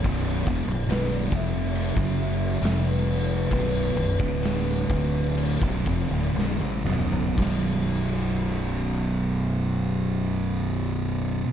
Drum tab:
CC |x-x-x-x-x-x-x-x-|x-x-x-x-x-x-----|x---------------|
SD |----o-------o---|----o-------o---|o---------------|
T1 |----------------|-------------o--|----------------|
T2 |----------------|--------------o-|----------------|
FT |----------------|---------------o|----------------|
BD |o-o---o--o------|o--o--o--oo-----|o---------------|